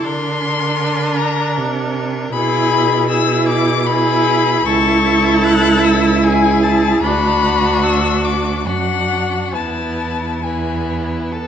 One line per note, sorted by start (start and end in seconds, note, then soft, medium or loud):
0.03 1.58 D3 loud
0.03 2.32 D4 loud
0.03 2.33 A#4 medium
0.03 1.19 C6 loud
1.17 1.57 A#5 loud
1.57 2.32 C3 medium
2.32 4.61 B2 loud
2.32 3.08 E4 loud
2.32 3.08 G#4 loud
2.32 3.05 B5 loud
3.09 3.86 E4 loud
3.09 3.85 G#4 loud
3.09 3.47 E6 loud
3.48 3.88 D6 loud
3.87 4.64 E4 loud
3.87 4.64 G#4 loud
3.87 4.67 B5 loud
4.65 6.98 C#2 loud
4.65 6.98 E4 loud
4.65 6.20 A4 loud
4.65 5.45 C#6 loud
5.44 5.86 F#6 loud
5.84 6.25 E6 loud
6.23 7.05 G#4 loud
6.23 6.65 G#5 loud
6.64 7.02 A5 loud
7.02 8.67 D2 loud
7.02 8.63 D4 loud
7.02 8.65 F#4 loud
7.02 7.85 B5 loud
7.83 8.26 E6 loud
8.25 8.68 D6 loud
8.65 9.54 F#2 medium
8.65 9.56 D4 medium
8.65 9.55 F#4 medium
8.65 9.53 F#5 loud
9.52 11.47 E2 medium
9.52 10.43 B3 medium
9.52 10.44 E4 medium
9.52 10.45 A5 loud
10.43 11.47 B3 medium
10.43 11.33 E4 medium
10.43 11.32 G#5 medium
11.32 11.47 A4 medium